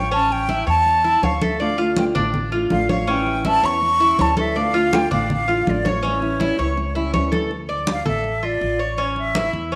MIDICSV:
0, 0, Header, 1, 7, 480
1, 0, Start_track
1, 0, Key_signature, -1, "minor"
1, 0, Tempo, 369231
1, 155, Time_signature, 4, 2, 24, 8
1, 12680, End_track
2, 0, Start_track
2, 0, Title_t, "Flute"
2, 0, Program_c, 0, 73
2, 0, Note_on_c, 0, 79, 87
2, 155, Note_off_c, 0, 79, 0
2, 163, Note_on_c, 0, 81, 92
2, 416, Note_on_c, 0, 79, 91
2, 435, Note_off_c, 0, 81, 0
2, 886, Note_off_c, 0, 79, 0
2, 901, Note_on_c, 0, 81, 90
2, 1617, Note_on_c, 0, 77, 81
2, 1636, Note_off_c, 0, 81, 0
2, 1861, Note_on_c, 0, 76, 77
2, 1880, Note_off_c, 0, 77, 0
2, 2086, Note_off_c, 0, 76, 0
2, 2094, Note_on_c, 0, 77, 80
2, 2310, Note_off_c, 0, 77, 0
2, 2337, Note_on_c, 0, 77, 70
2, 2551, Note_off_c, 0, 77, 0
2, 2581, Note_on_c, 0, 79, 87
2, 2659, Note_off_c, 0, 79, 0
2, 3531, Note_on_c, 0, 77, 92
2, 3749, Note_off_c, 0, 77, 0
2, 3783, Note_on_c, 0, 77, 83
2, 4033, Note_on_c, 0, 79, 87
2, 4053, Note_off_c, 0, 77, 0
2, 4497, Note_off_c, 0, 79, 0
2, 4503, Note_on_c, 0, 81, 112
2, 4751, Note_on_c, 0, 85, 96
2, 4770, Note_off_c, 0, 81, 0
2, 5478, Note_on_c, 0, 81, 96
2, 5497, Note_off_c, 0, 85, 0
2, 5699, Note_off_c, 0, 81, 0
2, 5711, Note_on_c, 0, 76, 83
2, 5949, Note_on_c, 0, 77, 93
2, 5968, Note_off_c, 0, 76, 0
2, 6434, Note_on_c, 0, 79, 99
2, 6453, Note_off_c, 0, 77, 0
2, 6657, Note_off_c, 0, 79, 0
2, 6669, Note_on_c, 0, 77, 81
2, 6879, Note_off_c, 0, 77, 0
2, 6923, Note_on_c, 0, 77, 94
2, 7409, Note_on_c, 0, 74, 84
2, 7429, Note_off_c, 0, 77, 0
2, 7654, Note_on_c, 0, 73, 84
2, 7673, Note_off_c, 0, 74, 0
2, 9305, Note_off_c, 0, 73, 0
2, 10296, Note_on_c, 0, 77, 90
2, 10491, Note_off_c, 0, 77, 0
2, 10507, Note_on_c, 0, 76, 80
2, 10986, Note_on_c, 0, 74, 91
2, 11006, Note_off_c, 0, 76, 0
2, 11722, Note_on_c, 0, 73, 69
2, 11742, Note_off_c, 0, 74, 0
2, 11932, Note_off_c, 0, 73, 0
2, 11940, Note_on_c, 0, 76, 79
2, 12373, Note_off_c, 0, 76, 0
2, 12680, End_track
3, 0, Start_track
3, 0, Title_t, "Cuban tres"
3, 0, Program_c, 1, 25
3, 0, Note_on_c, 1, 73, 75
3, 142, Note_off_c, 1, 73, 0
3, 149, Note_on_c, 1, 61, 85
3, 618, Note_off_c, 1, 61, 0
3, 636, Note_on_c, 1, 64, 74
3, 864, Note_off_c, 1, 64, 0
3, 869, Note_on_c, 1, 73, 74
3, 1338, Note_off_c, 1, 73, 0
3, 1357, Note_on_c, 1, 64, 64
3, 1590, Note_off_c, 1, 64, 0
3, 1603, Note_on_c, 1, 73, 71
3, 1833, Note_off_c, 1, 73, 0
3, 1843, Note_on_c, 1, 69, 73
3, 2073, Note_off_c, 1, 69, 0
3, 2077, Note_on_c, 1, 74, 69
3, 2310, Note_off_c, 1, 74, 0
3, 2313, Note_on_c, 1, 65, 80
3, 2781, Note_off_c, 1, 65, 0
3, 2794, Note_on_c, 1, 62, 89
3, 3262, Note_off_c, 1, 62, 0
3, 3276, Note_on_c, 1, 65, 69
3, 3743, Note_off_c, 1, 65, 0
3, 3760, Note_on_c, 1, 73, 73
3, 3992, Note_off_c, 1, 73, 0
3, 3996, Note_on_c, 1, 61, 84
3, 4464, Note_off_c, 1, 61, 0
3, 4485, Note_on_c, 1, 64, 68
3, 4715, Note_off_c, 1, 64, 0
3, 4723, Note_on_c, 1, 73, 82
3, 5188, Note_off_c, 1, 73, 0
3, 5203, Note_on_c, 1, 64, 74
3, 5435, Note_off_c, 1, 64, 0
3, 5446, Note_on_c, 1, 73, 77
3, 5676, Note_off_c, 1, 73, 0
3, 5685, Note_on_c, 1, 69, 76
3, 5915, Note_off_c, 1, 69, 0
3, 5925, Note_on_c, 1, 74, 73
3, 6156, Note_off_c, 1, 74, 0
3, 6160, Note_on_c, 1, 65, 77
3, 6626, Note_off_c, 1, 65, 0
3, 6643, Note_on_c, 1, 62, 86
3, 7107, Note_off_c, 1, 62, 0
3, 7122, Note_on_c, 1, 65, 67
3, 7587, Note_off_c, 1, 65, 0
3, 7603, Note_on_c, 1, 73, 76
3, 7834, Note_off_c, 1, 73, 0
3, 7835, Note_on_c, 1, 61, 87
3, 8303, Note_off_c, 1, 61, 0
3, 8318, Note_on_c, 1, 64, 70
3, 8551, Note_off_c, 1, 64, 0
3, 8564, Note_on_c, 1, 73, 71
3, 9027, Note_off_c, 1, 73, 0
3, 9038, Note_on_c, 1, 64, 64
3, 9271, Note_off_c, 1, 64, 0
3, 9276, Note_on_c, 1, 73, 78
3, 9510, Note_off_c, 1, 73, 0
3, 9513, Note_on_c, 1, 69, 69
3, 9748, Note_off_c, 1, 69, 0
3, 9995, Note_on_c, 1, 74, 69
3, 10461, Note_off_c, 1, 74, 0
3, 10472, Note_on_c, 1, 69, 69
3, 10939, Note_off_c, 1, 69, 0
3, 10956, Note_on_c, 1, 65, 63
3, 11421, Note_off_c, 1, 65, 0
3, 11432, Note_on_c, 1, 73, 63
3, 11666, Note_off_c, 1, 73, 0
3, 11673, Note_on_c, 1, 61, 82
3, 12138, Note_off_c, 1, 61, 0
3, 12156, Note_on_c, 1, 64, 70
3, 12619, Note_off_c, 1, 64, 0
3, 12636, Note_on_c, 1, 61, 69
3, 12680, Note_off_c, 1, 61, 0
3, 12680, End_track
4, 0, Start_track
4, 0, Title_t, "Nylon-string guitar"
4, 0, Program_c, 2, 24
4, 2071, Note_on_c, 2, 50, 65
4, 2083, Note_on_c, 2, 57, 72
4, 2087, Note_on_c, 2, 62, 70
4, 2097, Note_on_c, 2, 65, 73
4, 2304, Note_off_c, 2, 65, 0
4, 2305, Note_off_c, 2, 50, 0
4, 2311, Note_off_c, 2, 57, 0
4, 2313, Note_off_c, 2, 62, 0
4, 2320, Note_on_c, 2, 65, 49
4, 2332, Note_on_c, 2, 62, 46
4, 2339, Note_on_c, 2, 57, 38
4, 2546, Note_off_c, 2, 57, 0
4, 2549, Note_off_c, 2, 65, 0
4, 2553, Note_on_c, 2, 50, 72
4, 2555, Note_off_c, 2, 62, 0
4, 2561, Note_on_c, 2, 57, 73
4, 2569, Note_on_c, 2, 62, 77
4, 2577, Note_on_c, 2, 65, 78
4, 2785, Note_off_c, 2, 65, 0
4, 2786, Note_off_c, 2, 50, 0
4, 2790, Note_off_c, 2, 57, 0
4, 2794, Note_off_c, 2, 62, 0
4, 2801, Note_on_c, 2, 65, 44
4, 2811, Note_on_c, 2, 62, 43
4, 2817, Note_on_c, 2, 57, 40
4, 3030, Note_off_c, 2, 65, 0
4, 3033, Note_off_c, 2, 57, 0
4, 3035, Note_off_c, 2, 62, 0
4, 3282, Note_on_c, 2, 65, 50
4, 3294, Note_on_c, 2, 62, 46
4, 3305, Note_on_c, 2, 57, 40
4, 3511, Note_off_c, 2, 65, 0
4, 3515, Note_off_c, 2, 57, 0
4, 3517, Note_off_c, 2, 62, 0
4, 3522, Note_on_c, 2, 50, 70
4, 3531, Note_on_c, 2, 57, 77
4, 3535, Note_on_c, 2, 62, 78
4, 3546, Note_on_c, 2, 65, 74
4, 3990, Note_off_c, 2, 50, 0
4, 3996, Note_off_c, 2, 57, 0
4, 3996, Note_on_c, 2, 52, 67
4, 3998, Note_off_c, 2, 62, 0
4, 4001, Note_on_c, 2, 55, 68
4, 4003, Note_off_c, 2, 65, 0
4, 4006, Note_on_c, 2, 61, 82
4, 4017, Note_on_c, 2, 64, 76
4, 4223, Note_off_c, 2, 64, 0
4, 4228, Note_off_c, 2, 52, 0
4, 4230, Note_off_c, 2, 61, 0
4, 4231, Note_off_c, 2, 55, 0
4, 4238, Note_on_c, 2, 64, 43
4, 4246, Note_on_c, 2, 61, 39
4, 4254, Note_on_c, 2, 55, 34
4, 4469, Note_off_c, 2, 64, 0
4, 4470, Note_off_c, 2, 55, 0
4, 4473, Note_off_c, 2, 61, 0
4, 4475, Note_on_c, 2, 52, 71
4, 4485, Note_on_c, 2, 55, 69
4, 4490, Note_on_c, 2, 61, 75
4, 4495, Note_on_c, 2, 64, 78
4, 4698, Note_off_c, 2, 64, 0
4, 4708, Note_off_c, 2, 52, 0
4, 4709, Note_off_c, 2, 61, 0
4, 4713, Note_off_c, 2, 55, 0
4, 4714, Note_on_c, 2, 64, 50
4, 4725, Note_on_c, 2, 61, 44
4, 4737, Note_on_c, 2, 55, 38
4, 4944, Note_off_c, 2, 55, 0
4, 4945, Note_off_c, 2, 61, 0
4, 4947, Note_off_c, 2, 64, 0
4, 5197, Note_on_c, 2, 64, 52
4, 5215, Note_on_c, 2, 61, 50
4, 5224, Note_on_c, 2, 55, 44
4, 5429, Note_off_c, 2, 64, 0
4, 5435, Note_off_c, 2, 55, 0
4, 5438, Note_off_c, 2, 61, 0
4, 5439, Note_on_c, 2, 52, 73
4, 5450, Note_on_c, 2, 55, 70
4, 5457, Note_on_c, 2, 61, 75
4, 5463, Note_on_c, 2, 64, 75
4, 5910, Note_off_c, 2, 52, 0
4, 5916, Note_off_c, 2, 55, 0
4, 5919, Note_off_c, 2, 61, 0
4, 5922, Note_off_c, 2, 64, 0
4, 5925, Note_on_c, 2, 50, 64
4, 5927, Note_on_c, 2, 57, 63
4, 5940, Note_on_c, 2, 62, 78
4, 5943, Note_on_c, 2, 65, 81
4, 6149, Note_off_c, 2, 65, 0
4, 6153, Note_off_c, 2, 50, 0
4, 6154, Note_off_c, 2, 57, 0
4, 6161, Note_off_c, 2, 62, 0
4, 6165, Note_on_c, 2, 65, 47
4, 6181, Note_on_c, 2, 62, 45
4, 6184, Note_on_c, 2, 57, 33
4, 6393, Note_off_c, 2, 65, 0
4, 6397, Note_off_c, 2, 57, 0
4, 6401, Note_off_c, 2, 62, 0
4, 6407, Note_on_c, 2, 50, 80
4, 6413, Note_on_c, 2, 57, 79
4, 6419, Note_on_c, 2, 62, 72
4, 6425, Note_on_c, 2, 65, 81
4, 6627, Note_off_c, 2, 65, 0
4, 6634, Note_off_c, 2, 50, 0
4, 6637, Note_off_c, 2, 57, 0
4, 6640, Note_off_c, 2, 62, 0
4, 6643, Note_on_c, 2, 65, 50
4, 6654, Note_on_c, 2, 62, 48
4, 6664, Note_on_c, 2, 57, 37
4, 6872, Note_off_c, 2, 65, 0
4, 6875, Note_off_c, 2, 57, 0
4, 6877, Note_off_c, 2, 62, 0
4, 7126, Note_on_c, 2, 65, 52
4, 7142, Note_on_c, 2, 62, 51
4, 7149, Note_on_c, 2, 57, 42
4, 7353, Note_off_c, 2, 65, 0
4, 7361, Note_off_c, 2, 62, 0
4, 7365, Note_off_c, 2, 57, 0
4, 7373, Note_on_c, 2, 50, 69
4, 7383, Note_on_c, 2, 57, 80
4, 7388, Note_on_c, 2, 62, 83
4, 7394, Note_on_c, 2, 65, 72
4, 7836, Note_off_c, 2, 50, 0
4, 7841, Note_off_c, 2, 57, 0
4, 7841, Note_on_c, 2, 52, 64
4, 7844, Note_off_c, 2, 62, 0
4, 7847, Note_off_c, 2, 65, 0
4, 7851, Note_on_c, 2, 55, 69
4, 7857, Note_on_c, 2, 61, 71
4, 7861, Note_on_c, 2, 64, 66
4, 8064, Note_off_c, 2, 64, 0
4, 8071, Note_off_c, 2, 52, 0
4, 8073, Note_off_c, 2, 61, 0
4, 8075, Note_off_c, 2, 55, 0
4, 8080, Note_on_c, 2, 64, 50
4, 8089, Note_on_c, 2, 61, 43
4, 8100, Note_on_c, 2, 55, 35
4, 8310, Note_off_c, 2, 64, 0
4, 8314, Note_off_c, 2, 55, 0
4, 8314, Note_off_c, 2, 61, 0
4, 8320, Note_on_c, 2, 52, 65
4, 8329, Note_on_c, 2, 55, 72
4, 8337, Note_on_c, 2, 61, 76
4, 8344, Note_on_c, 2, 64, 72
4, 8546, Note_off_c, 2, 64, 0
4, 8550, Note_off_c, 2, 52, 0
4, 8555, Note_off_c, 2, 55, 0
4, 8556, Note_off_c, 2, 61, 0
4, 8561, Note_on_c, 2, 64, 48
4, 8571, Note_on_c, 2, 61, 45
4, 8583, Note_on_c, 2, 55, 36
4, 8787, Note_off_c, 2, 61, 0
4, 8788, Note_off_c, 2, 55, 0
4, 8790, Note_off_c, 2, 64, 0
4, 9047, Note_on_c, 2, 64, 49
4, 9056, Note_on_c, 2, 61, 49
4, 9065, Note_on_c, 2, 55, 45
4, 9273, Note_off_c, 2, 64, 0
4, 9275, Note_off_c, 2, 55, 0
4, 9277, Note_off_c, 2, 61, 0
4, 9285, Note_on_c, 2, 52, 65
4, 9291, Note_on_c, 2, 55, 76
4, 9301, Note_on_c, 2, 61, 74
4, 9306, Note_on_c, 2, 64, 73
4, 9752, Note_off_c, 2, 52, 0
4, 9754, Note_off_c, 2, 55, 0
4, 9760, Note_off_c, 2, 61, 0
4, 9762, Note_off_c, 2, 64, 0
4, 12680, End_track
5, 0, Start_track
5, 0, Title_t, "Upright bass"
5, 0, Program_c, 3, 32
5, 0, Note_on_c, 3, 33, 91
5, 796, Note_off_c, 3, 33, 0
5, 867, Note_on_c, 3, 40, 90
5, 1541, Note_off_c, 3, 40, 0
5, 1590, Note_on_c, 3, 38, 85
5, 2719, Note_off_c, 3, 38, 0
5, 2799, Note_on_c, 3, 33, 89
5, 3469, Note_off_c, 3, 33, 0
5, 3518, Note_on_c, 3, 33, 80
5, 4643, Note_off_c, 3, 33, 0
5, 4718, Note_on_c, 3, 40, 91
5, 5389, Note_off_c, 3, 40, 0
5, 5446, Note_on_c, 3, 38, 86
5, 6567, Note_off_c, 3, 38, 0
5, 6648, Note_on_c, 3, 33, 92
5, 7314, Note_off_c, 3, 33, 0
5, 7369, Note_on_c, 3, 33, 89
5, 8488, Note_off_c, 3, 33, 0
5, 8565, Note_on_c, 3, 37, 93
5, 9231, Note_off_c, 3, 37, 0
5, 9280, Note_on_c, 3, 38, 90
5, 10402, Note_off_c, 3, 38, 0
5, 10478, Note_on_c, 3, 33, 96
5, 11146, Note_off_c, 3, 33, 0
5, 11194, Note_on_c, 3, 33, 80
5, 12316, Note_off_c, 3, 33, 0
5, 12394, Note_on_c, 3, 40, 94
5, 12680, Note_off_c, 3, 40, 0
5, 12680, End_track
6, 0, Start_track
6, 0, Title_t, "Muted nylon-string guitar strokes"
6, 3043, Note_on_c, 9, 29, 60
6, 3173, Note_off_c, 9, 29, 0
6, 4955, Note_on_c, 9, 29, 61
6, 5085, Note_off_c, 9, 29, 0
6, 6886, Note_on_c, 9, 29, 68
6, 7016, Note_off_c, 9, 29, 0
6, 8798, Note_on_c, 9, 29, 59
6, 8928, Note_off_c, 9, 29, 0
6, 12680, End_track
7, 0, Start_track
7, 0, Title_t, "Drums"
7, 158, Note_on_c, 9, 63, 30
7, 288, Note_off_c, 9, 63, 0
7, 396, Note_on_c, 9, 63, 36
7, 526, Note_off_c, 9, 63, 0
7, 633, Note_on_c, 9, 63, 58
7, 763, Note_off_c, 9, 63, 0
7, 879, Note_on_c, 9, 63, 32
7, 1009, Note_off_c, 9, 63, 0
7, 1121, Note_on_c, 9, 63, 37
7, 1251, Note_off_c, 9, 63, 0
7, 1360, Note_on_c, 9, 63, 30
7, 1490, Note_off_c, 9, 63, 0
7, 1600, Note_on_c, 9, 63, 81
7, 1730, Note_off_c, 9, 63, 0
7, 1840, Note_on_c, 9, 63, 90
7, 1970, Note_off_c, 9, 63, 0
7, 2075, Note_on_c, 9, 63, 34
7, 2205, Note_off_c, 9, 63, 0
7, 2322, Note_on_c, 9, 63, 34
7, 2452, Note_off_c, 9, 63, 0
7, 2554, Note_on_c, 9, 63, 88
7, 2684, Note_off_c, 9, 63, 0
7, 2802, Note_on_c, 9, 63, 35
7, 2802, Note_on_c, 9, 64, 75
7, 2932, Note_off_c, 9, 63, 0
7, 2932, Note_off_c, 9, 64, 0
7, 3038, Note_on_c, 9, 63, 34
7, 3038, Note_on_c, 9, 64, 64
7, 3168, Note_off_c, 9, 63, 0
7, 3168, Note_off_c, 9, 64, 0
7, 3276, Note_on_c, 9, 63, 34
7, 3406, Note_off_c, 9, 63, 0
7, 3514, Note_on_c, 9, 63, 81
7, 3644, Note_off_c, 9, 63, 0
7, 3762, Note_on_c, 9, 63, 85
7, 3892, Note_off_c, 9, 63, 0
7, 3999, Note_on_c, 9, 63, 31
7, 4129, Note_off_c, 9, 63, 0
7, 4244, Note_on_c, 9, 63, 36
7, 4374, Note_off_c, 9, 63, 0
7, 4481, Note_on_c, 9, 63, 63
7, 4611, Note_off_c, 9, 63, 0
7, 4729, Note_on_c, 9, 63, 34
7, 4859, Note_off_c, 9, 63, 0
7, 4972, Note_on_c, 9, 63, 33
7, 5102, Note_off_c, 9, 63, 0
7, 5204, Note_on_c, 9, 63, 30
7, 5334, Note_off_c, 9, 63, 0
7, 5443, Note_on_c, 9, 63, 89
7, 5573, Note_off_c, 9, 63, 0
7, 5678, Note_on_c, 9, 63, 84
7, 5808, Note_off_c, 9, 63, 0
7, 5920, Note_on_c, 9, 63, 29
7, 6050, Note_off_c, 9, 63, 0
7, 6161, Note_on_c, 9, 63, 34
7, 6291, Note_off_c, 9, 63, 0
7, 6408, Note_on_c, 9, 63, 100
7, 6538, Note_off_c, 9, 63, 0
7, 6651, Note_on_c, 9, 63, 35
7, 6651, Note_on_c, 9, 64, 73
7, 6781, Note_off_c, 9, 63, 0
7, 6781, Note_off_c, 9, 64, 0
7, 6890, Note_on_c, 9, 63, 36
7, 6890, Note_on_c, 9, 64, 67
7, 7020, Note_off_c, 9, 63, 0
7, 7020, Note_off_c, 9, 64, 0
7, 7136, Note_on_c, 9, 63, 35
7, 7266, Note_off_c, 9, 63, 0
7, 7375, Note_on_c, 9, 63, 83
7, 7505, Note_off_c, 9, 63, 0
7, 7615, Note_on_c, 9, 63, 85
7, 7745, Note_off_c, 9, 63, 0
7, 7860, Note_on_c, 9, 63, 35
7, 7990, Note_off_c, 9, 63, 0
7, 8089, Note_on_c, 9, 63, 36
7, 8219, Note_off_c, 9, 63, 0
7, 8329, Note_on_c, 9, 63, 60
7, 8459, Note_off_c, 9, 63, 0
7, 8570, Note_on_c, 9, 63, 33
7, 8700, Note_off_c, 9, 63, 0
7, 8807, Note_on_c, 9, 63, 35
7, 8937, Note_off_c, 9, 63, 0
7, 9052, Note_on_c, 9, 63, 32
7, 9182, Note_off_c, 9, 63, 0
7, 9280, Note_on_c, 9, 63, 77
7, 9410, Note_off_c, 9, 63, 0
7, 9524, Note_on_c, 9, 63, 86
7, 9654, Note_off_c, 9, 63, 0
7, 9762, Note_on_c, 9, 63, 31
7, 9892, Note_off_c, 9, 63, 0
7, 10004, Note_on_c, 9, 63, 36
7, 10134, Note_off_c, 9, 63, 0
7, 10232, Note_on_c, 9, 63, 96
7, 10362, Note_off_c, 9, 63, 0
7, 10475, Note_on_c, 9, 63, 29
7, 10475, Note_on_c, 9, 64, 74
7, 10605, Note_off_c, 9, 63, 0
7, 10605, Note_off_c, 9, 64, 0
7, 10714, Note_on_c, 9, 63, 31
7, 10844, Note_off_c, 9, 63, 0
7, 10954, Note_on_c, 9, 63, 31
7, 11084, Note_off_c, 9, 63, 0
7, 11198, Note_on_c, 9, 63, 36
7, 11328, Note_off_c, 9, 63, 0
7, 11668, Note_on_c, 9, 63, 29
7, 11798, Note_off_c, 9, 63, 0
7, 11910, Note_on_c, 9, 63, 33
7, 12040, Note_off_c, 9, 63, 0
7, 12156, Note_on_c, 9, 63, 94
7, 12286, Note_off_c, 9, 63, 0
7, 12394, Note_on_c, 9, 63, 30
7, 12524, Note_off_c, 9, 63, 0
7, 12680, End_track
0, 0, End_of_file